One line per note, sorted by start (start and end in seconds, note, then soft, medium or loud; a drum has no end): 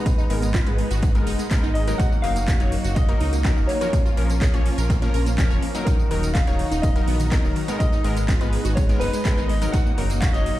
0.00 0.27 G#3 medium
0.00 0.27 B3 medium
0.00 3.89 D#4 medium
0.00 0.74 B4 medium
0.00 0.27 A#5 medium
0.00 1.96 A#5 medium
0.05 1.98 G#3 medium
0.05 0.12 G#3 medium
0.05 1.98 B3 medium
0.05 kick loud
0.05 closed hi-hat medium
0.05 tambourine medium
0.18 0.24 D#4 loud
0.18 snare medium
0.18 tambourine soft
0.30 0.60 G#1 medium
0.30 0.44 G#3 medium
0.30 0.37 G#3 medium
0.30 0.44 B3 medium
0.30 0.44 A#4 medium
0.30 closed hi-hat medium
0.30 open hi-hat loud
0.42 0.49 G#3 medium
0.42 closed hi-hat medium
0.42 tambourine medium
0.54 0.61 F4 loud
0.54 kick loud
0.54 snare loud
0.54 clap loud
0.54 closed hi-hat medium
0.54 tambourine medium
0.66 0.83 G#1 medium
0.66 0.81 G#3 medium
0.66 0.73 G#3 medium
0.66 0.81 B3 medium
0.66 0.81 B4 medium
0.66 closed hi-hat soft
0.66 tambourine soft
0.78 0.85 G#3 medium
0.78 closed hi-hat medium
0.78 open hi-hat loud
0.91 1.21 G#1 loud
0.91 0.97 F#4 medium
0.91 closed hi-hat medium
0.91 tambourine medium
1.02 1.09 G#3 medium
1.02 kick loud
1.02 closed hi-hat medium
1.02 tambourine medium
1.15 1.29 G#3 medium
1.15 1.21 G#3 medium
1.15 1.29 B3 medium
1.15 1.29 A#4 medium
1.15 closed hi-hat soft
1.15 tambourine soft
1.27 1.35 F#1 medium
1.27 1.33 D#4 loud
1.27 closed hi-hat medium
1.27 open hi-hat loud
1.39 1.45 G#3 medium
1.39 closed hi-hat medium
1.39 closed hi-hat soft
1.39 tambourine medium
1.50 1.85 G#3 medium
1.50 1.58 G#3 medium
1.50 1.85 B3 medium
1.50 1.85 A#4 loud
1.50 kick loud
1.50 snare loud
1.50 clap loud
1.50 closed hi-hat medium
1.50 tambourine medium
1.63 1.94 G#1 medium
1.63 1.70 D#4 medium
1.63 tambourine soft
1.74 1.82 G#3 medium
1.74 1.99 D#5 loud
1.74 2.00 D#5 medium
1.74 closed hi-hat medium
1.74 open hi-hat loud
1.88 2.21 F#3 medium
1.88 1.94 G#3 medium
1.88 2.21 D#4 medium
1.88 2.21 A#4 medium
1.88 closed hi-hat medium
1.88 closed hi-hat soft
1.88 tambourine medium
1.98 5.83 A#3 medium
1.98 2.06 F#4 loud
1.98 3.91 F#4 medium
1.98 2.21 F#5 loud
1.98 kick loud
1.98 closed hi-hat medium
1.98 tambourine medium
2.12 2.18 A#3 medium
2.12 tambourine soft
2.22 2.54 F#1 loud
2.22 2.38 F#3 medium
2.22 2.30 A#3 medium
2.22 2.38 D#4 medium
2.22 2.38 A#4 medium
2.22 2.92 F5 loud
2.22 closed hi-hat medium
2.22 open hi-hat loud
2.36 2.42 A#3 medium
2.36 snare medium
2.36 closed hi-hat medium
2.36 tambourine medium
2.48 2.54 F#4 loud
2.48 kick loud
2.48 snare loud
2.48 clap loud
2.48 closed hi-hat medium
2.48 tambourine medium
2.60 2.77 F#1 loud
2.60 2.74 F#3 medium
2.60 2.66 A#3 medium
2.60 2.74 D#4 medium
2.60 2.74 C#5 medium
2.60 closed hi-hat soft
2.60 tambourine soft
2.72 2.79 A#3 medium
2.72 closed hi-hat medium
2.72 open hi-hat loud
2.84 3.15 F#1 medium
2.84 2.91 F#4 medium
2.84 closed hi-hat soft
2.84 tambourine medium
2.95 3.03 A#3 medium
2.95 3.70 D#5 loud
2.95 kick loud
2.95 closed hi-hat medium
2.95 tambourine medium
3.09 3.23 F#3 medium
3.09 3.15 A#3 medium
3.09 3.23 D#4 medium
3.09 3.23 A#4 medium
3.09 closed hi-hat soft
3.09 tambourine soft
3.20 3.51 C#2 medium
3.20 3.27 D#4 medium
3.20 open hi-hat medium
3.20 open hi-hat loud
3.33 3.39 A#3 medium
3.33 closed hi-hat medium
3.33 tambourine medium
3.44 3.78 F#3 medium
3.44 3.51 C#4 loud
3.44 3.78 D#4 medium
3.44 3.78 A#4 loud
3.44 kick loud
3.44 snare loud
3.44 clap loud
3.44 closed hi-hat medium
3.44 tambourine medium
3.57 3.65 F#1 medium
3.57 3.63 A#3 medium
3.57 snare medium
3.57 tambourine soft
3.67 3.75 A#3 medium
3.67 4.61 C#5 medium
3.67 snare medium
3.67 closed hi-hat medium
3.67 open hi-hat loud
3.81 4.14 F3 medium
3.81 4.14 C#4 medium
3.81 3.88 F#4 medium
3.81 4.14 A#4 medium
3.81 closed hi-hat medium
3.81 tambourine medium
3.93 4.00 A#3 medium
3.93 5.85 C#4 medium
3.93 5.85 F4 medium
3.93 kick loud
3.93 closed hi-hat medium
3.93 tambourine medium
4.05 4.12 F4 loud
4.05 snare medium
4.05 tambourine soft
4.17 4.48 A#1 medium
4.17 4.31 F3 medium
4.17 4.24 A#3 medium
4.17 4.31 C#4 medium
4.17 4.32 A#4 medium
4.17 closed hi-hat medium
4.17 open hi-hat loud
4.30 4.36 A#3 medium
4.30 closed hi-hat soft
4.30 tambourine medium
4.41 4.48 G#4 loud
4.41 kick loud
4.41 snare loud
4.41 clap loud
4.41 closed hi-hat medium
4.41 tambourine medium
4.54 4.70 A#1 medium
4.54 4.68 F3 medium
4.54 4.60 A#3 medium
4.54 4.68 C#4 medium
4.54 4.68 C#5 medium
4.54 closed hi-hat soft
4.54 tambourine soft
4.66 4.72 A#3 medium
4.66 closed hi-hat medium
4.66 open hi-hat loud
4.78 5.08 A#1 loud
4.78 4.84 A#4 medium
4.78 closed hi-hat soft
4.78 tambourine medium
4.89 4.96 A#3 medium
4.89 kick loud
4.89 snare loud
4.89 closed hi-hat medium
4.89 tambourine medium
5.02 5.16 F3 medium
5.02 5.08 A#3 medium
5.02 5.16 C#4 medium
5.02 5.16 A#4 medium
5.02 closed hi-hat soft
5.02 tambourine soft
5.14 5.44 A#1 medium
5.14 5.20 A#4 medium
5.14 closed hi-hat medium
5.14 open hi-hat loud
5.26 5.33 A#3 medium
5.26 closed hi-hat soft
5.26 tambourine medium
5.38 5.72 F3 medium
5.38 5.45 A#3 medium
5.38 5.72 C#4 medium
5.38 5.72 A#4 loud
5.38 kick loud
5.38 snare loud
5.38 clap loud
5.38 closed hi-hat medium
5.38 tambourine medium
5.50 5.59 F1 loud
5.50 5.57 C#5 medium
5.50 tambourine soft
5.62 5.69 A#3 medium
5.62 closed hi-hat medium
5.62 open hi-hat loud
5.75 6.08 F#3 medium
5.75 5.81 A#3 medium
5.75 6.08 D#4 medium
5.75 6.08 A#4 medium
5.75 closed hi-hat soft
5.75 tambourine medium
5.85 7.78 D#3 medium
5.85 10.60 D#4 medium
5.85 5.93 D#4 loud
5.85 7.78 F#4 medium
5.85 6.36 A#4 medium
5.85 9.70 A#5 medium
5.85 kick loud
5.85 closed hi-hat medium
5.85 tambourine medium
5.99 6.05 D#3 medium
5.99 tambourine soft
6.11 6.41 D#1 loud
6.11 6.17 D#3 medium
6.11 6.25 F#3 medium
6.11 6.25 D#4 medium
6.11 6.25 A#4 medium
6.11 closed hi-hat medium
6.11 open hi-hat loud
6.23 6.29 D#3 medium
6.23 snare soft
6.23 closed hi-hat soft
6.23 tambourine medium
6.33 6.41 D#4 loud
6.33 6.84 F5 loud
6.33 kick loud
6.33 snare loud
6.33 clap loud
6.33 closed hi-hat medium
6.33 tambourine medium
6.47 6.64 D#1 loud
6.47 6.54 D#3 medium
6.47 6.61 F#3 medium
6.47 6.61 D#4 medium
6.47 6.61 C#5 medium
6.47 closed hi-hat soft
6.47 tambourine soft
6.59 6.66 D#3 medium
6.59 closed hi-hat medium
6.59 open hi-hat loud
6.71 7.02 D#1 medium
6.71 6.78 D#4 medium
6.71 closed hi-hat soft
6.71 tambourine medium
6.82 6.90 D#3 medium
6.82 7.77 D#5 loud
6.82 kick loud
6.82 closed hi-hat medium
6.82 tambourine medium
6.96 7.02 D#3 medium
6.96 7.10 F#3 medium
6.96 7.10 D#4 medium
6.96 7.10 A#4 medium
6.96 closed hi-hat soft
6.96 tambourine soft
7.07 7.38 A#1 medium
7.07 7.14 B3 medium
7.07 open hi-hat medium
7.07 open hi-hat loud
7.20 7.26 D#3 medium
7.20 closed hi-hat medium
7.20 tambourine medium
7.31 7.65 F#3 medium
7.31 7.38 A#3 medium
7.31 7.65 D#4 medium
7.31 7.65 A#4 loud
7.31 kick loud
7.31 snare loud
7.31 clap loud
7.31 closed hi-hat medium
7.31 tambourine medium
7.44 7.52 D#1 medium
7.44 7.50 D#3 medium
7.44 snare medium
7.44 tambourine soft
7.55 7.62 D#3 medium
7.55 snare medium
7.55 closed hi-hat medium
7.55 open hi-hat loud
7.68 8.02 G#3 medium
7.68 8.02 B3 medium
7.68 7.74 D#4 medium
7.68 8.02 A#4 medium
7.68 closed hi-hat medium
7.68 tambourine medium
7.79 7.87 G#3 medium
7.79 9.72 G#3 medium
7.79 9.72 B3 medium
7.79 8.79 D#5 loud
7.79 kick loud
7.79 closed hi-hat medium
7.79 tambourine medium
7.92 7.99 D#4 medium
7.92 snare medium
7.92 tambourine soft
8.04 8.35 G#1 medium
8.04 8.11 G#3 medium
8.04 8.19 G#3 medium
8.04 8.19 B3 medium
8.04 8.19 A#4 medium
8.04 closed hi-hat medium
8.04 open hi-hat loud
8.17 8.23 G#3 medium
8.17 closed hi-hat medium
8.17 tambourine medium
8.28 8.35 F4 loud
8.28 kick loud
8.28 snare loud
8.28 clap loud
8.28 closed hi-hat medium
8.28 tambourine medium
8.41 8.57 G#1 medium
8.41 8.47 G#3 medium
8.41 8.55 G#3 medium
8.41 8.55 B3 medium
8.41 8.55 B4 medium
8.41 closed hi-hat soft
8.41 tambourine soft
8.53 8.59 G#3 medium
8.53 closed hi-hat medium
8.53 open hi-hat loud
8.65 8.95 G#1 loud
8.65 8.71 F#4 medium
8.65 closed hi-hat medium
8.65 tambourine medium
8.75 8.83 G#3 medium
8.75 8.81 C#5 loud
8.75 8.87 C#5 loud
8.75 kick loud
8.75 closed hi-hat medium
8.75 tambourine medium
8.89 8.95 G#3 medium
8.89 9.03 G#3 medium
8.89 9.03 B3 medium
8.89 9.03 A#4 medium
8.89 closed hi-hat soft
8.89 tambourine soft
9.00 9.09 F#1 medium
9.00 9.07 D#4 medium
9.00 9.50 B4 loud
9.00 closed hi-hat medium
9.00 open hi-hat loud
9.13 9.20 G#3 medium
9.13 closed hi-hat soft
9.13 tambourine medium
9.24 9.32 G#3 medium
9.24 9.59 G#3 medium
9.24 9.59 B3 medium
9.24 9.59 A#4 loud
9.24 kick loud
9.24 snare loud
9.24 clap loud
9.24 closed hi-hat medium
9.24 tambourine medium
9.37 9.68 G#1 medium
9.37 9.44 D#4 medium
9.37 tambourine soft
9.48 9.56 G#3 medium
9.48 9.71 D#5 loud
9.48 closed hi-hat medium
9.48 open hi-hat loud
9.62 9.95 F#3 medium
9.62 9.68 G#3 medium
9.62 9.95 D#4 medium
9.62 9.95 A#4 medium
9.62 closed hi-hat medium
9.62 closed hi-hat soft
9.62 tambourine medium
9.72 10.60 A#2 medium
9.72 9.80 F#4 loud
9.72 10.60 F#4 medium
9.72 10.18 F#5 loud
9.72 kick loud
9.72 closed hi-hat medium
9.72 tambourine medium
9.86 9.92 A#3 medium
9.86 tambourine soft
9.98 10.28 F#1 loud
9.98 10.12 F#3 medium
9.98 10.04 A#3 medium
9.98 10.12 D#4 medium
9.98 10.12 A#4 medium
9.98 closed hi-hat medium
9.98 open hi-hat loud
10.10 10.16 A#3 medium
10.10 snare soft
10.10 closed hi-hat medium
10.10 tambourine medium
10.21 10.28 F#4 loud
10.21 10.34 F5 loud
10.21 kick loud
10.21 snare loud
10.21 clap loud
10.21 closed hi-hat medium
10.21 tambourine medium
10.33 10.51 F#1 loud
10.33 10.48 F#3 medium
10.33 10.41 A#3 medium
10.33 10.48 D#4 medium
10.33 10.48 C#5 medium
10.33 10.60 D#5 loud
10.33 closed hi-hat soft
10.33 tambourine soft
10.46 10.53 A#3 medium
10.46 closed hi-hat medium
10.46 open hi-hat loud